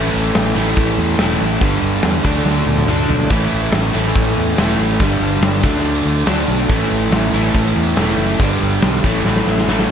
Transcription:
Already playing: A2 E3 A3 C#4 E4
0.13 A1, crash
0.35 A1, snare, crash
0.55 A1 A2 E3 A3 C#4 E4, crash
0.67 snare
0.77 A1, kick, crash
0.97 E2, crash
1.18 E1 A2 E3 A3 C#4 E4, snare, crash
1.40 A1, crash
1.59 G1 G2 D3 G3 B3 D4, kick, crash
1.82 G1, crash
2.03 E2, snare, crash
2.23 D2 D3 F#3 A3 D4, kick, crash
2.45 D2, snare
2.66 D2, high tom
2.78 high tom
2.87 D2 D3 F#3 A3 D4, mid tom
3.09 B1, floor tom
3.20 floor tom
3.29 A1 A2 E3 A3 C#4 E4, kick, crash
3.51 A1, crash
3.72 A1, snare, crash
3.93 A1 A2 E3 A3 C#4 E4, crash
4.05 snare
4.15 A1, kick, crash
4.37 E2, crash
4.57 E1 A2 E3 A3 C#4 E4, snare, crash
4.69 snare
4.79 A1, crash
4.99 G1 G2 D3 G3 B3 D4, kick, crash
5.20 G1, crash
5.41 G1, snare, crash
5.63 D2 D3 F#3 A3 D4, kick, crash
5.83 D2, crash
6.06 D2, crash
6.26 D2 D3 F#3 A3 D4, snare, crash
6.48 B1, crash
6.70 A1 A2 E3 A3 C#4 E4, kick, crash
6.91 A1, crash
7.11 A1, snare, crash
7.32 A1 E3 A3 C#4 E4, crash
7.37 A2
7.54 A1, kick, crash
7.76 E2, crash
7.97 E1 A2 E3 A3 C#4 E4, snare, crash
8.17 F#1, crash
8.39 G1 G2 D3 G3 B3 D4, kick, crash
8.61 G1, crash
8.82 B1, snare, crash
9.03 A1 A2 E3 A3 C#4 E4, kick, crash
9.15 snare
9.25 A1, snare
9.36 snare
9.47 A1, snare
9.58 snare
9.67 A1 A2 E3 A3 C#4 E4, snare
9.79 snare

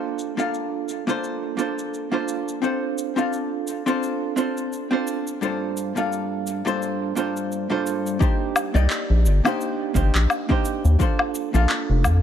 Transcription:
Already playing: A#3 D4 F4 A4 C5
0.19 shaker
0.37 A#3 D4 F4 A4 F5, shaker
0.54 shaker
0.89 shaker
1.07 A#3 D4 F4 A4 C5, shaker
1.24 shaker
1.57 A#3 D4 F4 A4 C5, shaker
1.79 shaker
1.94 shaker
2.12 A#3 D4 F4 A4 C5
2.28 shaker
2.48 shaker
2.62 C4 D4 F4 A4 C5, shaker
2.98 shaker
3.16 C4 D4 F4 A4 F5, shaker
3.33 shaker
3.67 shaker
3.86 C4 D4 F4 A4 C5, shaker
4.03 shaker
4.36 C4 D4 F4 A4 C5, shaker
4.58 shaker
4.73 shaker
4.91 C4 D4 F4 A4 C5
5.08 shaker
5.27 shaker
5.41 G2 A#3 D4 F4 A4 C5, shaker
5.77 shaker
5.96 G2 A#3 D4 F4 A4 F5, shaker
6.12 shaker
6.47 shaker
6.65 G2 A#3 D4 F4 A4 C5, shaker
6.82 shaker
7.15 G2 A#3 D4 F4 A4 C5, shaker
7.37 shaker
7.52 shaker
7.69 G2 A#3 D4 F4 A4 C5
7.87 shaker
8.06 shaker
8.19 A#3 D4 D#4 G4 C5, kick, shaker
8.56 low woodblock, shaker
8.74 C2 A#3 D#4 G4 D5 D#5, shaker
8.90 clap, shaker
9.10 A#1
9.25 G1, shaker
9.45 A#3 D4 D#4 G4 C5, low woodblock, shaker
9.61 shaker
9.94 G1 A#3 D4 D#4 G4 C5, kick, shaker
10.15 A#1, clap, shaker
10.30 low woodblock, shaker
10.49 A#3 D4 D#4 G4 C5, kick
10.65 shaker
10.85 D#2, shaker
10.99 A#3 D4 F4 A4 C5, kick, shaker
11.19 low woodblock
11.35 shaker
11.54 A#1 A#3 D4 F4 A4 F5, shaker
11.69 clap, shaker
11.89 F1
12.04 F2, kick, low woodblock, shaker

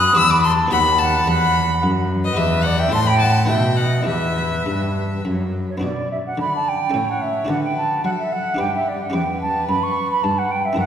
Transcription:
Already playing: F#2 B3 A4 B4 D#6 F#6
0.13 E2 B3 G4 B4 B5 E6
0.18 E2
0.30 B5 D6
0.44 A5 C6
0.68 D#2 B3 F#4 B4 B5
0.72 D#2 F#5
0.98 F#5 A5
1.27 E2 F#5 B5
1.83 F#2
2.24 B4 D#5
2.33 B3 G4 B4 E5
2.38 E2 B4
2.64 D5 F#5
2.79 E5 G5
2.88 C4 E4 A4
2.92 A2 A5 C6
3.07 G5 B5
3.19 F#5 A5
3.45 B2 B3 D#4 A4 E5 G5
3.50 B2
3.76 D#5 F#5
4.03 B3 E4 G4 E5
4.07 E2 B4
4.66 G2
5.25 F#2
5.70 C#5
5.78 B3 D4 F#4
5.83 B2 D5
6.11 E5
6.27 F#5
6.37 D3 D5 B5
6.56 A5
6.68 G5
6.90 C#4 A4
6.94 A2 C#5
7.10 F#5
7.22 E5
7.45 D4 F#4 A4 B4
7.49 D3 F#5
7.64 G5
7.77 A5
8.04 F#3 A4 F#5
8.19 E5
8.33 F#5
8.54 D4 G4 B4
8.59 G2 G4 G5
8.75 E5
8.88 D5
9.03 F#5
9.10 C#4 G4 B4
9.14 E2 G5
9.41 A5
9.68 F#2 B5
9.83 C#6
10.11 B5
10.23 G2 A5
10.38 F#5
10.51 G5
10.65 E5
10.73 C#4 E4 A#4
10.77 F#2 A#4 F#5

